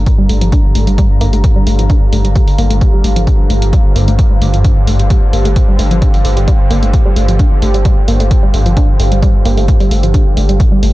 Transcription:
Already playing: G2 D3 G4 C5 F5 A#5
0.06 kick, closed hi-hat
0.18 G1 G3
0.29 G1 A3, open hi-hat
0.41 G1 F3, closed hi-hat
0.52 D4, kick, closed hi-hat
0.64 G1
0.75 G1 A3, open hi-hat
0.87 G1 G3, closed hi-hat
0.98 G3, kick, closed hi-hat
1.10 G1
1.21 G1 A#3, open hi-hat
1.33 G1 A3, closed hi-hat
1.44 kick, closed hi-hat
1.56 G1 G3
1.67 G1 A3, open hi-hat
1.79 G1 F3, closed hi-hat
1.90 D4, kick, closed hi-hat
2.02 G1
2.13 G1 A3, open hi-hat
2.25 G1 G3, closed hi-hat
2.35 G3, kick, closed hi-hat
2.48 G1, open hi-hat
2.58 G1 A#3, open hi-hat
2.70 G1 A3, closed hi-hat
2.81 kick, closed hi-hat
2.93 G1 G3
3.04 G1 A3, open hi-hat
3.16 G1 F3, closed hi-hat
3.27 D4, kick, closed hi-hat
3.39 G1
3.50 G1 A3, open hi-hat
3.62 G1 G3, closed hi-hat
3.73 G3, kick, closed hi-hat
3.85 G1
3.96 G1 A#3, open hi-hat
4.08 G1 A3, closed hi-hat
4.19 G5, kick, closed hi-hat
4.31 G1 G3
4.42 G1 A3, open hi-hat
4.54 G1 F3, closed hi-hat
4.64 D4, kick, closed hi-hat
4.77 G1
4.87 G1 A3, open hi-hat
4.99 G1 G3, closed hi-hat
5.10 G3, kick, closed hi-hat
5.22 G1
5.33 G1 A#3, open hi-hat
5.45 G1 A3, closed hi-hat
5.56 kick, closed hi-hat
5.68 G1 G3
5.79 G1 A3, open hi-hat
5.91 G1 F3, closed hi-hat
6.02 D4, kick, closed hi-hat
6.14 G1, open hi-hat
6.25 G1 A3, open hi-hat
6.37 G1 G3, closed hi-hat
6.48 G3, kick, closed hi-hat
6.60 G1
6.71 G1 A#3, open hi-hat
6.83 G1 A3, closed hi-hat
6.93 kick, closed hi-hat
7.06 G1 G3
7.16 G1 A3, open hi-hat
7.28 G1 F3, closed hi-hat
7.39 D4, kick, closed hi-hat
7.51 G1
7.62 G1 A3, open hi-hat
7.74 G1 G3, closed hi-hat
7.85 G3, kick, closed hi-hat
7.97 G1
8.08 G1 A#3, open hi-hat
8.20 G1 A3, closed hi-hat
8.31 kick, closed hi-hat
8.43 G1 G3
8.54 G1 A3, open hi-hat
8.66 G1 F3, closed hi-hat
8.77 D4, kick, closed hi-hat
8.89 G1
9.00 G1 A3, open hi-hat
9.12 G1 G3, closed hi-hat
9.23 G3, kick, closed hi-hat
9.35 G1
9.45 G1 A#3, open hi-hat
9.57 G1 A3, open hi-hat
9.68 kick, closed hi-hat
9.80 G1 G3, open hi-hat
9.91 G1 A3, open hi-hat
10.03 G1 F3, closed hi-hat
10.14 D4, kick, closed hi-hat
10.26 G1
10.37 G1 A3, open hi-hat
10.49 G1 G3, closed hi-hat
10.60 G2 D3, kick, closed hi-hat
10.72 G1 G3
10.83 G1 A3, open hi-hat

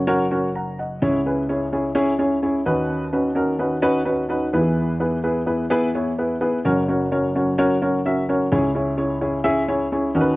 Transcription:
Already playing: F#1 F#2
0.07 C#4 F#4 A#4 C#5
0.31 C#4 F#4 A#4 C#5
0.55 F#5 A#5
0.79 D#5 F#5
1.02 C#2 C#3 C#4 E4 G#4 C#5
1.26 C#4 E4 G#4 B4
1.49 C#4 E4 G#4 C#5
1.73 C#4 E4 G#4 C#5
1.95 C#4 E4 G#4 C#5
2.19 C#4 E4 G#4 C#5
2.43 C#4 E4 G#4 C#5
2.66 D#2 D#3 C#4 D#4 F#4 B4
3.13 C#4 D#4 F#4 B4
3.35 C#4 D#4 F#4 A#4
3.59 C#4 D#4 F#4 B4
3.82 C#4 D#4 F#4 B4
4.05 C#4 D#4 F#4 B4
4.29 C#4 D#4 F#4 B4
4.53 E2 E3 B3 E4 G4 B4
4.59 G#4
5.00 B3 E4 G#4 B4
5.24 B3 E4 G#4 B4
5.46 B3 E4 G#4 B4
5.70 B3 E4 G#4 B4
5.95 B3 E4 G#4 C#5
6.18 B3 E4 G#4 B4
6.41 B3 E4 G#4 B4
6.65 F#1 F#2 C#4 F#4 A#4 C#5
6.88 C#4 F#4 A#4 C#5
7.11 C#4 F#4 A#4 C#5
7.35 C#4 F#4 A#4 C#5
7.58 C#4 F#4 A#4 C#5
7.82 C#4 F#4 A#4 C#5
8.05 C#4 F#4 A#4 E5
8.29 C#4 F#4 A#4 C#5
8.52 C#2 C#3 C#4 E4 G#4 C#5
8.75 C#4 E4 G#4 C#5
8.97 C#4 E4 G#4 C#5
9.21 C#4 E4 G#4 C#5
9.44 C#4 E4 G#4 E5
9.68 C#4 E4 G#4 C#5
9.92 C#4 E4 G#4 C#5
10.15 D#2 D#3 C#4 D#4 F#4 A#4
10.21 B4

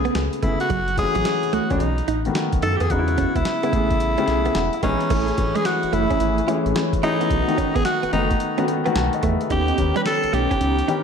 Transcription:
Already playing: C#3 A3 B3 G#4
0.05 B3, closed hi-hat
0.15 C#2, snare, clap, closed hi-hat
0.33 closed hi-hat
0.43 G1 C#3 A3 B3 E4 G#4, kick, closed hi-hat
0.60 F#4, closed hi-hat
0.70 F#1 F#3, kick, closed hi-hat
0.88 closed hi-hat
0.98 E3 A3 C#4 F#4 G#4, muted clean electric guitar stroke, kick, closed hi-hat
1.15 A1 F#3, closed hi-hat
1.25 muted clean electric guitar stroke, snare, clap, closed hi-hat
1.43 closed hi-hat
1.53 C#2 A3 F#4, closed hi-hat
1.70 C#2 E3 A3 C#4 D#4 F#4, kick, closed hi-hat
1.80 B1, closed hi-hat
1.98 closed hi-hat
2.08 A1 D#4, closed hi-hat
2.25 D#3 A3 B3 F#4, closed hi-hat
2.35 muted clean electric guitar stroke, snare, clap, closed hi-hat
2.53 B1, kick, closed hi-hat
2.62 F#2 D#4 A4, closed hi-hat
2.76 G4, closed hi-hat
2.81 F2 B3 G#4
2.90 E2 C#3 G#3 B3 D#4 F#4, kick, closed hi-hat
2.99 E4
3.08 muted clean electric guitar stroke, closed hi-hat
3.18 C#4, kick, closed hi-hat
3.35 C#2 B3 E4, kick, closed hi-hat
3.45 muted clean electric guitar stroke, snare, clap, closed hi-hat
3.63 C#3 G#3 B3 E4, closed hi-hat
3.73 A1 C#3 A3 B3 G#4, kick, closed hi-hat
3.91 kick, closed hi-hat
4.00 closed hi-hat
4.18 C#3 A3 B3 C#4 G4, closed hi-hat
4.26 B1 G#4 G#5, muted clean electric guitar stroke, snare, closed hi-hat
4.45 B3, closed hi-hat
4.55 E1 F#5, snare, clap, closed hi-hat
4.73 E5, closed hi-hat
4.83 A#1 E3 G#3 B3 C#4 D#4 G#4 D#5, kick, closed hi-hat
5.01 closed hi-hat
5.10 A1 A3 C#4 E4 G#4, kick, closed hi-hat, crash
5.28 closed hi-hat
5.38 A1 E3 A3 C#4 G#4, muted clean electric guitar stroke, kick, closed hi-hat
5.55 G#3 G#4, closed hi-hat
5.65 F#4, muted clean electric guitar stroke, snare, clap, closed hi-hat
5.83 F#1, closed hi-hat
5.93 F#1 A3 C#4 E4 G#4, closed hi-hat
6.10 C#4, kick, closed hi-hat
6.20 G#1 A3 C#4 E4 G#4, closed hi-hat
6.38 closed hi-hat
6.47 E3 A3 C#4 E4 G#4, closed hi-hat
6.66 A1 A3 C#4 E4 G#4, closed hi-hat
6.76 muted clean electric guitar stroke, snare, clap, closed hi-hat
6.93 kick, closed hi-hat
7.03 E3 A3 C#4 D#4 E4 G#4, closed hi-hat
7.21 B3, closed hi-hat
7.30 B1 A3 B3 D#4 F#4, kick, closed hi-hat
7.48 D#3 A3 B3 F#4, muted clean electric guitar stroke, closed hi-hat
7.58 C#4, kick, closed hi-hat
7.75 A1 B3 G#4, kick, closed hi-hat
7.85 F#4, muted clean electric guitar stroke, snare, clap, closed hi-hat
8.03 F#1 B3, closed hi-hat
8.13 F#1 D#3 A3 B3 D#4 F#4, closed hi-hat
8.31 kick, closed hi-hat
8.40 closed hi-hat
8.58 D#3 A3 B3 C#4 D#4 F#4, closed hi-hat
8.68 muted clean electric guitar stroke, closed hi-hat
8.85 D#3 A3 B3 F#4, closed hi-hat
8.95 B1 A5, snare, clap, closed hi-hat
9.13 B4 D#5, closed hi-hat
9.23 E2 A3 G#4 B4 E5, kick, closed hi-hat
9.41 F#4 A4, closed hi-hat
9.50 D#2 B3 C#4 D#4 G4, kick, closed hi-hat
9.68 closed hi-hat
9.78 D#2 D#3 B3 C#4 G4, muted clean electric guitar stroke, kick, closed hi-hat
9.96 G3 B4, closed hi-hat
10.06 A4, muted clean electric guitar stroke, snare, clap, closed hi-hat
10.23 B1, closed hi-hat
10.33 B1 A3 B3 C#4 D#4 G4, closed hi-hat
10.51 C#4, kick, closed hi-hat
10.60 C#2 B3 C#4 D#4 G4, closed hi-hat
10.79 closed hi-hat
10.88 D#3 B3 C#4 D#4 G4, closed hi-hat

